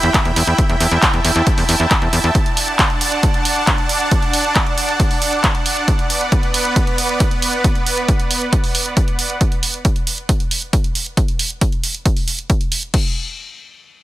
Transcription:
0.00 0.10 E2 medium
0.00 2.31 E4 medium
0.00 2.31 E5 medium
0.00 2.31 G5 medium
0.00 0.57 B5 medium
0.00 closed hi-hat soft
0.00 impact medium
0.14 kick loud
0.14 clap loud
0.14 closed hi-hat loud
0.25 0.32 E2 medium
0.25 closed hi-hat soft
0.36 0.43 E2 loud
0.36 open hi-hat loud
0.47 0.54 E2 medium
0.47 closed hi-hat soft
0.58 5.84 A5 medium
0.58 kick loud
0.58 closed hi-hat loud
0.69 0.76 E2 medium
0.69 closed hi-hat soft
0.80 0.87 E2 loud
0.80 open hi-hat loud
0.92 0.98 E2 medium
0.92 closed hi-hat soft
1.02 kick loud
1.02 clap loud
1.02 closed hi-hat medium
1.14 1.20 E2 medium
1.14 closed hi-hat soft
1.25 1.31 E2 loud
1.25 open hi-hat loud
1.36 1.42 E2 medium
1.36 closed hi-hat soft
1.47 kick loud
1.47 closed hi-hat loud
1.58 1.64 E2 medium
1.58 open hi-hat medium
1.69 1.75 E2 loud
1.69 open hi-hat loud
1.80 1.86 E2 medium
1.80 closed hi-hat soft
1.91 kick loud
1.91 clap loud
1.91 closed hi-hat medium
2.02 2.08 E2 medium
2.02 closed hi-hat soft
2.13 2.20 E2 medium
2.13 open hi-hat loud
2.24 2.31 E2 medium
2.24 closed hi-hat soft
2.35 5.84 D4 medium
2.35 9.37 D5 medium
2.35 9.37 F#5 medium
2.35 kick loud
2.35 closed hi-hat medium
2.46 closed hi-hat soft
2.57 open hi-hat loud
2.68 closed hi-hat soft
2.79 kick loud
2.79 clap loud
2.79 closed hi-hat medium
2.90 closed hi-hat soft
3.01 open hi-hat loud
3.12 closed hi-hat soft
3.23 kick loud
3.23 closed hi-hat medium
3.34 closed hi-hat soft
3.45 open hi-hat loud
3.56 closed hi-hat soft
3.67 kick loud
3.67 clap loud
3.67 closed hi-hat medium
3.78 closed hi-hat soft
3.89 open hi-hat loud
4.00 closed hi-hat soft
4.11 kick loud
4.11 closed hi-hat medium
4.22 closed hi-hat soft
4.33 open hi-hat loud
4.45 closed hi-hat soft
4.55 kick loud
4.55 clap loud
4.55 closed hi-hat medium
4.67 closed hi-hat soft
4.78 open hi-hat loud
4.89 closed hi-hat soft
5.00 kick loud
5.00 closed hi-hat medium
5.11 open hi-hat medium
5.22 open hi-hat loud
5.33 closed hi-hat soft
5.44 kick loud
5.44 clap loud
5.44 closed hi-hat medium
5.55 closed hi-hat soft
5.66 open hi-hat loud
5.77 closed hi-hat soft
5.88 9.37 B3 medium
5.88 9.37 B4 medium
5.88 kick loud
5.88 closed hi-hat medium
5.99 closed hi-hat soft
6.10 open hi-hat loud
6.21 closed hi-hat soft
6.32 kick loud
6.32 closed hi-hat medium
6.43 closed hi-hat soft
6.54 open hi-hat loud
6.65 closed hi-hat soft
6.76 kick loud
6.76 closed hi-hat medium
6.87 closed hi-hat soft
6.98 open hi-hat loud
7.09 closed hi-hat soft
7.20 kick loud
7.20 closed hi-hat medium
7.31 closed hi-hat soft
7.42 open hi-hat loud
7.53 closed hi-hat soft
7.64 kick loud
7.64 closed hi-hat medium
7.75 closed hi-hat soft
7.86 open hi-hat loud
7.97 closed hi-hat soft
8.08 kick loud
8.08 closed hi-hat medium
8.20 closed hi-hat soft
8.31 open hi-hat loud
8.42 closed hi-hat soft
8.53 kick loud
8.53 closed hi-hat loud
8.64 open hi-hat medium
8.75 open hi-hat loud
8.86 closed hi-hat soft
8.97 kick loud
8.97 closed hi-hat medium
9.08 closed hi-hat soft
9.19 open hi-hat medium
9.30 closed hi-hat soft
9.41 kick loud
9.41 closed hi-hat medium
9.52 closed hi-hat soft
9.63 open hi-hat loud
9.74 closed hi-hat soft
9.85 kick loud
9.85 closed hi-hat medium
9.96 closed hi-hat soft
10.07 open hi-hat loud
10.18 closed hi-hat soft
10.29 kick loud
10.29 closed hi-hat loud
10.40 closed hi-hat soft
10.51 open hi-hat loud
10.62 closed hi-hat soft
10.73 kick loud
10.73 closed hi-hat medium
10.84 closed hi-hat soft
10.95 open hi-hat loud
11.06 closed hi-hat soft
11.17 kick loud
11.17 closed hi-hat medium
11.28 closed hi-hat soft
11.39 open hi-hat loud
11.50 closed hi-hat soft
11.61 kick loud
11.61 closed hi-hat loud
11.72 closed hi-hat soft
11.84 open hi-hat loud
11.95 closed hi-hat soft
12.06 kick loud
12.06 closed hi-hat loud
12.17 open hi-hat medium
12.28 open hi-hat loud
12.39 closed hi-hat soft
12.50 kick loud
12.50 closed hi-hat medium
12.61 closed hi-hat soft
12.72 open hi-hat medium
12.83 closed hi-hat soft
12.94 kick loud
12.94 crash medium

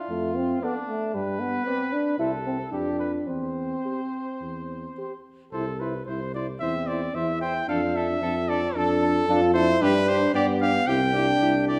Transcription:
0.00 0.65 F4 medium
0.09 0.54 F2 medium
0.09 0.38 A3 medium
0.36 0.62 C4 loud
0.62 0.74 B3 medium
0.62 1.14 D4 medium
0.62 0.79 A4 medium
0.62 0.78 D5 medium
0.89 1.16 A3 medium
1.14 1.58 G2 medium
1.14 1.42 G3 medium
1.14 2.17 B4 medium
1.40 1.65 B3 medium
1.66 1.94 C4 medium
1.66 1.83 B4 medium
1.66 1.82 D5 medium
1.93 2.18 D4 medium
2.19 2.63 C2 medium
2.19 2.31 E4 medium
2.19 2.36 G4 medium
2.19 2.71 A4 medium
2.19 2.35 C5 medium
2.46 2.58 C4 medium
2.72 3.18 F2 medium
2.72 3.29 D4 medium
2.72 2.99 G4 medium
2.72 2.89 G4 medium
2.72 2.89 B4 medium
2.99 3.12 B4 medium
3.27 3.75 E2 medium
3.27 5.25 C4 medium
3.27 5.21 C5 medium
3.85 4.01 G4 soft
3.85 4.01 C5 soft
4.41 4.88 E2 medium
4.97 5.14 G4 soft
4.97 5.13 C5 medium
5.52 6.01 C2 medium
5.52 5.66 E4 medium
5.52 5.81 A4 loud
5.52 5.65 C5 medium
5.80 5.93 E4 medium
5.80 6.05 B4 medium
5.80 5.93 C5 medium
6.06 6.55 C2 medium
6.06 6.20 E4 medium
6.06 6.33 C5 medium
6.06 6.20 C5 medium
6.34 6.47 E4 soft
6.34 6.47 C5 medium
6.34 6.46 D5 medium
6.60 7.09 E2 medium
6.60 7.16 C4 medium
6.60 6.74 E4 medium
6.60 6.74 C5 medium
6.60 6.89 E5 loud
6.87 7.00 E4 medium
6.87 7.00 C5 medium
6.87 7.16 D5 medium
7.14 7.62 E2 medium
7.14 7.67 E4 medium
7.14 7.28 E4 medium
7.14 7.27 C5 medium
7.14 7.40 E5 loud
7.41 7.54 E4 medium
7.41 7.54 C5 medium
7.41 7.68 G5 loud
7.68 8.16 F2 medium
7.68 8.23 D4 medium
7.68 7.81 D4 medium
7.68 7.81 A4 medium
7.68 7.97 F5 loud
7.95 8.08 D4 medium
7.95 8.07 A4 medium
7.95 8.50 E5 loud
8.21 8.69 F2 medium
8.21 8.75 C4 medium
8.21 8.35 D4 medium
8.21 8.34 A4 medium
8.49 8.62 D4 medium
8.49 8.61 A4 medium
8.49 8.77 D5 loud
8.75 9.22 F2 loud
8.75 9.28 D4 loud
8.75 8.88 D4 medium
8.75 9.53 A4 loud
8.75 8.89 A4 medium
9.02 9.15 D4 medium
9.02 9.14 A4 medium
9.28 9.75 F2 loud
9.28 9.41 D4 loud
9.28 9.54 F4 loud
9.28 9.40 A4 medium
9.54 9.68 D4 medium
9.54 9.83 E4 loud
9.54 9.67 A4 medium
9.54 9.83 C5 loud
9.81 10.29 G2 loud
9.81 10.36 D4 loud
9.81 9.94 D4 loud
9.81 9.94 G4 medium
9.81 10.10 B4 loud
10.07 10.21 D4 medium
10.07 10.19 G4 medium
10.07 10.34 C5 loud
10.34 10.81 G2 loud
10.34 10.89 B3 medium
10.34 10.47 D4 medium
10.34 10.46 G4 loud
10.34 10.46 D5 loud
10.61 10.74 D4 medium
10.61 10.73 G4 medium
10.61 10.88 F5 loud
10.86 11.35 C2 loud
10.86 11.13 C4 medium
10.86 11.00 E4 medium
10.86 11.00 G4 medium
10.86 11.67 G5 loud
11.14 11.79 D4 loud
11.14 11.27 E4 medium
11.14 11.26 G4 medium
11.40 11.79 C2 loud
11.40 11.55 E4 medium
11.40 11.53 G4 medium
11.68 11.79 E4 medium
11.68 11.79 G4 medium
11.68 11.79 D5 loud

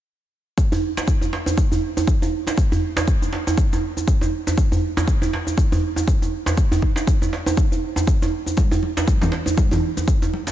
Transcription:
0.58 kick loud
0.58 shaker medium
0.72 djembe tone medium
0.72 djembe bass medium
0.72 shaker soft
0.97 djembe slap medium
0.97 djembe tone medium
0.97 shaker medium
1.08 kick loud
1.08 shaker medium
1.21 djembe tone medium
1.21 shaker soft
1.33 djembe slap medium
1.46 djembe tone medium
1.46 shaker medium
1.58 kick loud
1.58 shaker medium
1.72 djembe tone medium
1.72 djembe bass medium
1.72 shaker soft
1.97 djembe tone medium
1.97 shaker medium
2.08 kick loud
2.08 shaker medium
2.22 djembe tone medium
2.22 shaker soft
2.47 djembe slap medium
2.47 djembe tone medium
2.47 shaker medium
2.58 kick loud
2.58 shaker medium
2.72 djembe tone medium
2.72 djembe bass medium
2.72 shaker soft
2.96 djembe slap loud
2.96 djembe tone medium
2.96 shaker medium
3.08 kick loud
3.08 shaker medium
3.22 djembe tone medium
3.22 shaker soft
3.33 djembe slap medium
3.47 djembe tone medium
3.47 shaker medium
3.58 kick loud
3.58 shaker medium
3.73 djembe tone medium
3.73 shaker soft
3.97 djembe tone medium
3.97 shaker medium
4.08 kick loud
4.08 shaker medium
4.21 djembe tone medium
4.21 shaker soft
4.47 djembe tone medium
4.47 shaker medium
4.58 kick loud
4.58 shaker medium
4.72 djembe tone medium
4.72 djembe bass medium
4.72 shaker soft
4.97 djembe slap medium
4.97 djembe tone medium
4.97 shaker medium
5.08 kick loud
5.08 shaker medium
5.22 djembe tone medium
5.22 shaker soft
5.33 djembe slap medium
5.47 djembe tone medium
5.47 shaker medium
5.58 kick loud
5.58 shaker medium
5.72 djembe tone medium
5.72 djembe bass medium
5.72 shaker soft
5.96 djembe tone medium
5.96 shaker medium
6.08 kick loud
6.08 shaker medium
6.22 djembe tone medium
6.22 shaker soft
6.46 djembe slap medium
6.46 djembe tone medium
6.46 shaker medium
6.57 kick loud
6.57 shaker medium
6.72 djembe tone medium
6.72 djembe bass medium
6.72 shaker soft
6.82 kick medium
6.96 djembe slap medium
6.96 djembe tone medium
6.96 shaker medium
7.07 kick loud
7.07 shaker medium
7.22 djembe tone medium
7.22 shaker soft
7.33 djembe slap medium
7.46 djembe tone medium
7.46 shaker medium
7.57 kick loud
7.57 shaker medium
7.72 djembe tone medium
7.72 shaker soft
7.96 djembe tone medium
7.96 shaker medium
8.07 kick loud
8.07 shaker medium
8.22 djembe tone medium
8.22 shaker soft
8.46 djembe tone medium
8.46 shaker medium
8.57 kick loud
8.57 muted conga soft
8.57 high conga medium
8.57 shaker medium
8.71 djembe tone medium
8.71 djembe bass medium
8.71 shaker soft
8.83 muted conga soft
8.97 djembe slap medium
8.97 djembe tone medium
8.97 shaker medium
9.08 kick loud
9.08 high conga medium
9.08 shaker medium
9.21 muted conga soft
9.21 djembe tone medium
9.21 high conga medium
9.21 low conga medium
9.21 shaker soft
9.32 djembe slap medium
9.46 muted conga soft
9.46 djembe tone medium
9.46 shaker medium
9.58 kick loud
9.58 high conga medium
9.58 shaker medium
9.71 muted conga soft
9.71 djembe tone medium
9.71 djembe bass medium
9.71 low conga medium
9.71 shaker soft
9.97 muted conga soft
9.97 djembe tone medium
9.97 shaker medium
10.08 kick loud
10.08 shaker medium
10.22 djembe tone medium
10.22 shaker soft
10.33 muted conga soft
10.47 djembe slap medium
10.47 djembe tone medium
10.47 shaker medium

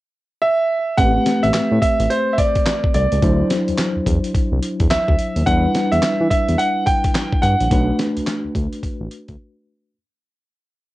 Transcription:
0.42 1.00 E5 medium
0.97 1.18 A1 loud
0.97 3.18 A3 medium
0.97 3.19 C4 medium
0.97 3.19 G4 medium
0.97 3.19 B4 medium
0.97 1.44 F#5 loud
0.97 kick loud
0.97 closed hi-hat medium
1.26 snare medium
1.26 closed hi-hat medium
1.43 1.51 A1 medium
1.43 1.80 E5 medium
1.43 closed hi-hat soft
1.54 1.61 A2 soft
1.54 snare loud
1.54 clap medium
1.54 closed hi-hat medium
1.72 1.79 A2 loud
1.82 2.11 E5 medium
1.82 kick medium
1.82 closed hi-hat medium
2.00 2.07 A1 medium
2.00 closed hi-hat medium
2.10 2.34 C5 medium
2.10 closed hi-hat medium
2.33 2.38 E5 medium
2.38 2.93 D5 medium
2.38 kick medium
2.38 closed hi-hat medium
2.56 kick medium
2.56 closed hi-hat soft
2.66 snare loud
2.66 clap medium
2.66 closed hi-hat medium
2.84 kick loud
2.94 3.07 C2 medium
2.94 3.47 D5 medium
2.94 closed hi-hat medium
3.12 3.20 C#2 medium
3.12 closed hi-hat medium
3.22 3.42 D2 loud
3.22 5.42 F#3 medium
3.22 5.43 D4 medium
3.22 5.43 E4 medium
3.22 5.44 C5 medium
3.22 kick loud
3.22 closed hi-hat medium
3.50 snare medium
3.50 closed hi-hat medium
3.68 3.72 E2 medium
3.68 closed hi-hat medium
3.78 snare loud
3.78 clap medium
3.78 closed hi-hat medium
3.96 4.00 E2 medium
4.06 4.19 E2 medium
4.06 kick medium
4.06 closed hi-hat medium
4.24 closed hi-hat medium
4.35 4.42 C2 soft
4.35 kick medium
4.35 closed hi-hat medium
4.52 4.60 C2 medium
4.63 closed hi-hat medium
4.80 4.88 E2 medium
4.80 kick medium
4.80 closed hi-hat soft
4.90 4.98 D2 medium
4.90 5.48 E5 medium
4.90 snare loud
4.90 clap medium
4.90 closed hi-hat medium
5.08 5.16 D2 medium
5.08 kick medium
5.19 closed hi-hat medium
5.36 5.44 D#2 medium
5.36 closed hi-hat medium
5.46 5.67 E2 loud
5.46 7.67 G3 medium
5.46 7.67 D4 medium
5.46 7.68 E4 medium
5.46 7.68 B4 medium
5.46 5.93 F#5 medium
5.46 kick loud
5.46 closed hi-hat medium
5.75 snare medium
5.75 closed hi-hat medium
5.92 6.00 E2 medium
5.92 6.28 E5 medium
5.92 closed hi-hat medium
6.02 6.10 E3 soft
6.02 snare loud
6.02 clap medium
6.02 closed hi-hat medium
6.20 6.28 E3 medium
6.30 6.59 E5 medium
6.30 kick medium
6.30 closed hi-hat medium
6.48 6.56 E2 medium
6.48 closed hi-hat medium
6.58 6.87 F#5 medium
6.58 closed hi-hat medium
6.86 7.44 G5 loud
6.86 kick medium
6.86 closed hi-hat medium
7.04 kick medium
7.04 closed hi-hat soft
7.15 snare loud
7.15 clap medium
7.15 closed hi-hat medium
7.32 kick loud
7.42 7.55 G2 medium
7.42 7.95 F#5 medium
7.42 closed hi-hat medium
7.60 7.68 A#1 medium
7.60 closed hi-hat medium
7.70 7.91 B1 loud
7.70 9.91 A3 medium
7.70 9.91 D4 medium
7.70 9.92 F#4 medium
7.70 9.92 B4 medium
7.70 kick loud
7.70 closed hi-hat medium
7.99 snare medium
7.99 closed hi-hat medium
8.17 8.21 D2 medium
8.17 closed hi-hat soft
8.27 snare loud
8.27 clap medium
8.27 closed hi-hat medium
8.45 8.49 D2 soft
8.55 8.67 D2 medium
8.55 kick loud
8.55 closed hi-hat medium
8.73 closed hi-hat medium
8.83 8.90 A1 soft
8.83 kick medium
8.83 closed hi-hat medium
9.00 9.08 A1 medium
9.11 closed hi-hat medium
9.28 9.36 D2 medium
9.28 kick medium
9.28 closed hi-hat medium

